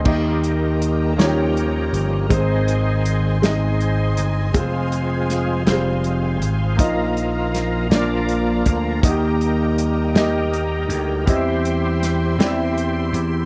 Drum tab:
CC |x-----|------|------|------|
HH |-xxxxx|xxxxxx|xxxxxx|xxxxxx|
SD |---o--|---o--|--oo--|--oo--|
BD |o-----|o-----|o-----|o----o|

CC |------|------|
HH |xxxxxx|xxxxxx|
SD |---o--|--oo--|
BD |o-----|o-----|